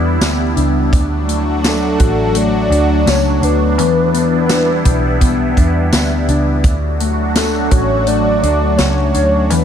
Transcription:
Already playing: picked electric bass E2, clean electric guitar E3 B3 D4 G4, analog synth pad G3 B3 D4 E4, soft synth lead G4
0.20 picked electric bass D2, clean electric guitar B3, snare, closed hi-hat, tambourine
0.56 picked electric bass C#2, clean electric guitar D4, closed hi-hat
0.92 picked electric bass D2, analog synth pad F#3 A3 D4 F#4, kick, closed hi-hat
1.28 clean electric guitar A3, closed hi-hat
1.63 clean electric guitar D4, soft synth lead A4, snare, closed hi-hat, tambourine
1.99 picked electric bass A1, clean electric guitar F#4, kick, closed hi-hat
2.35 clean electric guitar A3, soft synth lead D5, closed hi-hat
2.70 picked electric bass D2, clean electric guitar D4, closed hi-hat
3.06 picked electric bass C#2, clean electric guitar A3, soft synth lead C#5, snare, closed hi-hat, tambourine
3.41 picked electric bass D2, clean electric guitar D4, soft synth lead B4, closed hi-hat
3.78 picked electric bass E2, clean electric guitar E3, analog synth pad G3 B3 E4, closed hi-hat
4.14 clean electric guitar B3, closed hi-hat
4.49 clean electric guitar D4, snare, closed hi-hat, tambourine
4.85 picked electric bass B1, clean electric guitar G4, kick, closed hi-hat
5.21 clean electric guitar B3, kick, closed hi-hat
5.56 picked electric bass E2, clean electric guitar D4, kick, closed hi-hat
5.92 picked electric bass D2, clean electric guitar B3, snare, closed hi-hat, tambourine
6.28 picked electric bass C#2, clean electric guitar D4, closed hi-hat
6.63 picked electric bass D2, analog synth pad F#3 A3 D4 F#4, kick, closed hi-hat
7.00 clean electric guitar A3, closed hi-hat
7.35 clean electric guitar D4, soft synth lead A4, snare, closed hi-hat, tambourine
7.71 picked electric bass A1, clean electric guitar F#4, soft synth lead C#5, kick, closed hi-hat
8.07 clean electric guitar A3, soft synth lead D5, closed hi-hat
8.43 picked electric bass D2, clean electric guitar D4, closed hi-hat
8.77 picked electric bass C#2, clean electric guitar A3, soft synth lead C#5, snare, closed hi-hat, tambourine
9.14 picked electric bass D2, clean electric guitar D4, closed hi-hat
9.50 picked electric bass E2, clean electric guitar E3, analog synth pad G3 B3 E4, soft synth lead B4, closed hi-hat

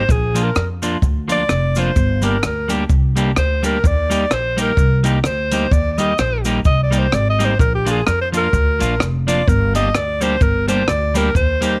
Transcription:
Already playing: alto saxophone C5
0.09 upright bass A#1, alto saxophone G#4, kick, cabasa
0.34 clean electric guitar F3 A#3 D4 F4, closed hi-hat, cabasa
0.43 alto saxophone A#4
0.56 upright bass F2, cross-stick, cabasa
0.82 clean electric guitar F3 A#3 D4 F4, closed hi-hat, cabasa
1.02 upright bass D2, kick, cabasa
1.28 clean electric guitar F3 A#3 D4 F4, alto saxophone D5, closed hi-hat, cabasa
1.49 upright bass F1, muted clean electric guitar stroke, cross-stick, cabasa
1.75 clean electric guitar F3 A#3 D4 F4, alto saxophone C5, closed hi-hat, cabasa
1.96 upright bass G1, kick, cabasa
2.22 clean electric guitar G3 A#3 D4 G4, alto saxophone A#4, closed hi-hat, cabasa
2.43 upright bass D2, alto saxophone A#4, cross-stick, cabasa
2.68 clean electric guitar G3 A#3 D4 G4, closed hi-hat, cabasa
2.90 upright bass C2, kick, cabasa
3.16 clean electric guitar G3 A#3 D4 G4, closed hi-hat, cabasa
3.36 upright bass D2, alto saxophone C5, muted clean electric guitar stroke, cross-stick, cabasa
3.63 clean electric guitar G3 A#3 D4 G4, alto saxophone A#4, closed hi-hat, cabasa
3.84 upright bass D#2, alto saxophone D5, kick, cabasa
4.10 clean electric guitar G3 A#3 D#4 G4, closed hi-hat, cabasa
4.30 upright bass A#1, alto saxophone C5, cross-stick, cabasa
4.57 clean electric guitar G3 A#3 D#4 G4, closed hi-hat, cabasa
4.61 alto saxophone A#4
4.77 upright bass C2, kick, cabasa
5.04 clean electric guitar G3 A#3 D#4 G4, closed hi-hat, cabasa
5.24 upright bass D2, alto saxophone C5, muted clean electric guitar stroke, cross-stick, cabasa
5.52 clean electric guitar G3 A#3 D#4 G4, closed hi-hat, cabasa
5.71 upright bass D#2, alto saxophone D5, kick, cabasa
5.92 alto saxophone D5
5.98 clean electric guitar G3 A#3 D#4 G4, alto saxophone D#5, closed hi-hat, cabasa
6.18 upright bass A#1, alto saxophone C5, cross-stick, cabasa
6.45 clean electric guitar G3 A#3 D#4 G4, closed hi-hat, cabasa
6.65 upright bass C2, alto saxophone D#5, kick, cabasa
6.83 alto saxophone D5
6.91 clean electric guitar G3 A#3 D#4 G4, closed hi-hat, cabasa
6.98 alto saxophone C5
7.11 upright bass G#1, alto saxophone D5, muted clean electric guitar stroke, cross-stick, cabasa
7.30 alto saxophone D#5
7.39 clean electric guitar G3 A#3 D#4 G4, closed hi-hat, cabasa
7.45 alto saxophone C5
7.59 upright bass A#1, alto saxophone A#4, kick, cabasa
7.75 alto saxophone G4
7.85 clean electric guitar F3 A#3 D4 F4, closed hi-hat, cabasa
7.91 alto saxophone G#4
8.06 upright bass F2, alto saxophone A#4, cross-stick, cabasa
8.21 alto saxophone C5
8.32 clean electric guitar F3 A#3 D4 F4, closed hi-hat, cabasa
8.37 alto saxophone A#4
8.53 upright bass D2, kick, cabasa
8.79 upright bass A#1, clean electric guitar F3 A#3 D4 F4, closed hi-hat, cabasa
8.99 upright bass F1, muted clean electric guitar stroke, cross-stick, cabasa
9.27 clean electric guitar F3 A#3 D4 F4, alto saxophone D5, closed hi-hat, cabasa
9.48 upright bass G1, alto saxophone A#4, kick, cabasa
9.74 clean electric guitar G3 A#3 D4 G4, alto saxophone D#5, closed hi-hat, cabasa
9.95 upright bass D2, alto saxophone D5, cross-stick, cabasa
10.21 clean electric guitar G3 A#3 D4 G4, alto saxophone C5, closed hi-hat, cabasa
10.41 upright bass G1, alto saxophone A#4, kick, cabasa
10.67 clean electric guitar G3 A#3 D4 G4, alto saxophone C5, closed hi-hat, cabasa
10.88 upright bass D2, alto saxophone D5, muted clean electric guitar stroke, cross-stick, cabasa
11.14 clean electric guitar G3 A#3 D4 G4, alto saxophone A#4, closed hi-hat, cabasa
11.35 upright bass D#2, alto saxophone C5, kick, cabasa
11.61 clean electric guitar G3 A#3 D#4 G4, closed hi-hat, cabasa

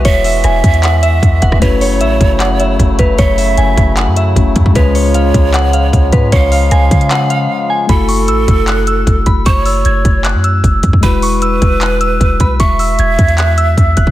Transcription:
Already playing: harmonium E3 G#3 B3 F#4, tine electric piano G#3 E4 F#4
0.05 808-style bass E1, synth bell C#5, pan flute E5, kick, closed hi-hat
0.24 synth bell E5, open hi-hat
0.44 808-style bass E1, synth bell G#5, cross-stick, closed hi-hat
0.64 808-style bass E2, kick, closed hi-hat
0.74 closed hi-hat
0.83 synth bell F#5, clap, closed hi-hat
1.03 synth bell E5, closed hi-hat
1.23 808-style bass E2, kick, closed hi-hat
1.42 808-style bass E1, synth bell F#5, kick, closed hi-hat
1.52 kick, cross-stick
1.60 808-style bass F#1, harmonium C#3 F#3 A3 E4, tine electric piano A3 C#4 E4, synth bell B4, pan flute C#5, kick, closed hi-hat
1.64 tine electric piano F#4
1.81 synth bell C#5, open hi-hat
2.01 808-style bass A1, synth bell E5, closed hi-hat
2.21 808-style bass F#1, kick, closed hi-hat
2.40 synth bell F#5, clap, closed hi-hat
2.60 synth bell E5, closed hi-hat
2.79 808-style bass F#1, kick, closed hi-hat
2.99 808-style bass F#1, synth bell B4, kick, closed hi-hat
3.19 808-style bass F#1, synth bell C#5, pan flute E5, kick, closed hi-hat
3.38 synth bell E5, open hi-hat
3.58 808-style bass F#1, synth bell G#5, closed hi-hat
3.77 808-style bass F#1, kick, closed hi-hat
3.97 synth bell F#5, clap, closed hi-hat
4.07 808-style bass F#2
4.16 synth bell E5, closed hi-hat
4.35 808-style bass F#1, tine electric piano A3 C#4 E4 F#4, kick, closed hi-hat
4.56 808-style bass F#2, kick, closed hi-hat
4.66 kick
4.73 808-style bass C#2, harmonium F3 G#3 F4, tine electric piano G#3 C#4 F4, synth bell B4, pan flute C#5, kick, closed hi-hat
4.78 tine electric piano G#4
4.95 synth bell C#5, open hi-hat
5.14 synth bell F5, closed hi-hat
5.34 808-style bass C#2, kick, closed hi-hat
5.54 synth bell F#5, clap, closed hi-hat
5.73 synth bell F5, closed hi-hat
5.93 808-style bass C#2, kick, closed hi-hat
6.12 808-style bass G#2, synth bell B4, kick, closed hi-hat
6.32 808-style bass C#2, synth bell C#5, pan flute F5, kick, closed hi-hat
6.52 synth bell F5, open hi-hat
6.71 808-style bass C#2, synth bell G#5, cross-stick, closed hi-hat
6.91 808-style bass C#3, kick, closed hi-hat
7.01 closed hi-hat
7.11 synth bell F#5, clap, closed hi-hat
7.30 synth bell F5, closed hi-hat
7.70 synth bell G#5
7.87 808-style bass F#1, tine electric piano A3 E4, pan flute A4, synth bell B5, kick, closed hi-hat
7.92 tine electric piano F#4
8.09 synth bell C#6, open hi-hat
8.28 808-style bass A1, synth bell E6, closed hi-hat
8.48 808-style bass F#1, kick, closed hi-hat
8.68 synth bell F#6, clap, closed hi-hat
8.87 synth bell E6, closed hi-hat
9.07 808-style bass F#1, kick, closed hi-hat
9.26 808-style bass F#1, synth bell B5, kick, closed hi-hat
9.46 808-style bass F#1, pan flute C5, synth bell C#6, kick, closed hi-hat
9.58 pan flute C#5
9.66 synth bell E6, open hi-hat
9.85 808-style bass F#1, synth bell G#6, closed hi-hat
10.05 808-style bass F#1, kick, closed hi-hat
10.25 synth bell F#6, clap, closed hi-hat
10.34 808-style bass F#2
10.44 synth bell E6, closed hi-hat
10.64 808-style bass F#1, kick, closed hi-hat
10.83 808-style bass F#2, kick, closed hi-hat
10.93 kick
11.01 808-style bass E1, tine electric piano G#3 E4, pan flute B4, synth bell B5, kick, closed hi-hat
11.05 tine electric piano F#4
11.22 synth bell C#6, open hi-hat
11.42 synth bell E6, closed hi-hat
11.62 808-style bass E1, kick, closed hi-hat
11.81 synth bell F#6, clap, closed hi-hat
12.01 synth bell E6, closed hi-hat
12.21 808-style bass E1, kick, closed hi-hat
12.40 808-style bass B1, synth bell B5, kick, closed hi-hat
12.60 808-style bass E1, pan flute E5, synth bell C#6, kick, closed hi-hat
12.79 synth bell E6, open hi-hat
12.99 808-style bass E1, synth bell G#6, closed hi-hat
13.19 808-style bass E2, kick, closed hi-hat
13.28 closed hi-hat
13.38 synth bell F#6, clap, closed hi-hat
13.58 synth bell E6, closed hi-hat
13.78 808-style bass E2, kick, closed hi-hat
13.97 808-style bass E1, synth bell F#6, kick, closed hi-hat
14.07 kick

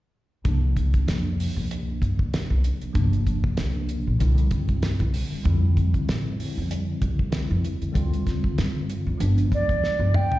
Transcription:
0.44 upright bass C2, tine electric piano C3 F3 A#3 D4, kick, closed hi-hat
0.77 kick, closed hi-hat
0.94 kick, closed hi-hat
1.07 upright bass F2, snare, closed hi-hat
1.40 open hi-hat
1.56 upright bass C2
1.71 closed hi-hat
2.02 upright bass G2, kick, closed hi-hat
2.19 kick
2.34 snare, closed hi-hat
2.50 upright bass C2
2.64 closed hi-hat
2.81 muted upright bass stroke, closed hi-hat
2.93 upright bass G1, tine electric piano C3 F3 A#3 D4, kick, closed hi-hat
3.13 closed hi-hat
3.27 kick, closed hi-hat
3.44 kick
3.57 upright bass C2, snare, closed hi-hat
3.89 closed hi-hat
4.07 upright bass A#1
4.19 upright bass C2, tine electric piano D3 G3 C4 E4, closed hi-hat
4.38 closed hi-hat
4.51 upright bass G2, kick, closed hi-hat
4.69 kick, closed hi-hat
4.82 snare, closed hi-hat
5.00 upright bass C2, kick, closed hi-hat
5.14 open hi-hat
5.32 muted upright bass stroke
5.44 upright bass F2, tine electric piano D3 G3 C4 E4, kick, closed hi-hat
5.77 kick, closed hi-hat
5.94 kick, closed hi-hat
6.08 upright bass A2, snare, closed hi-hat
6.40 open hi-hat
6.58 upright bass F2
6.71 closed hi-hat
7.02 upright bass C2, kick, closed hi-hat
7.19 kick
7.31 tine electric piano D3 G3 C4 E4, snare, closed hi-hat
7.51 upright bass F2
7.64 closed hi-hat
7.81 muted upright bass stroke, closed hi-hat
7.92 upright bass D2, tine electric piano D3 G3 C4 F4, kick, closed hi-hat
8.13 closed hi-hat
8.27 kick, snare, closed hi-hat
8.44 kick
8.58 upright bass G2, snare, closed hi-hat
8.90 closed hi-hat
9.06 upright bass D2
9.18 upright bass G1, tine electric piano F3 G#3 B3 D4, closed hi-hat
9.38 closed hi-hat
9.52 upright bass D2, flute D5, kick, closed hi-hat
9.69 kick, closed hi-hat
9.84 snare
9.99 upright bass G1
10.14 flute G5, mid tom
10.31 muted upright bass stroke, floor tom

